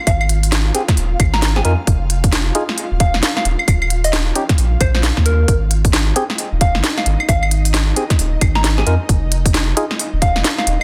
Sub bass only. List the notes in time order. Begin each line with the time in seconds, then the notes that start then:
0.07 G#1
0.97 D#1
1.20 G#1
1.65 F2
1.87 F1
2.92 D#1
3.14 F1
3.45 D#1
3.68 D#1
4.58 A#1
4.81 A#1
5.17 D#2
5.48 G#1
6.52 D#1
6.75 G#1
7.06 G#1
7.29 G#1
8.19 D#1
8.41 G#1
8.87 F2
9.09 F1
10.13 D#1
10.36 F1
10.67 D#1